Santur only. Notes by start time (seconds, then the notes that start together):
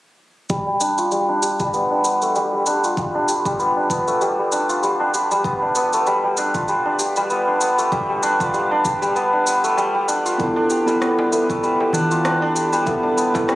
0.50 G3
0.67 G3
0.80 D4
0.98 F4
1.12 G3
1.29 D4
1.42 G4
1.60 G3
1.74 B3
1.91 D4
2.05 B3
2.22 A3
2.36 G3
2.53 G3
2.67 D4
2.84 F4
2.98 G3
3.15 D4
3.29 G4
3.46 G3
3.59 B3
3.76 D4
3.90 B3
4.07 A3
4.21 G3
4.39 G3
4.52 D4
4.69 F4
4.83 G3
5.00 D4
5.13 G4
5.31 G3
5.44 B3
5.62 D4
5.76 B3
5.93 A3
6.07 G3
6.24 G3
6.38 D4
6.55 F4
6.68 G3
6.86 D4
6.99 G4
7.17 G3
7.30 B3
7.48 D4
7.61 B3
7.78 A3
7.92 G3
8.09 G3
8.23 D4
8.40 F4
8.54 G3
8.71 D4
8.85 G4
9.02 G3
9.16 B3
9.33 D4
9.46 B3
9.64 A3
9.77 G3
9.95 G3
10.08 D4
10.25 F4
10.39 D4
10.56 D4
10.70 G4
10.87 G3
11.01 B3
11.18 D4
11.32 B3
11.50 A3
11.63 G3
11.80 G3
11.94 D4
12.11 F4
12.25 D4
12.42 D4
12.55 G4
12.72 G3
12.86 B3
13.03 D4
13.17 B3
13.34 A3
13.48 G3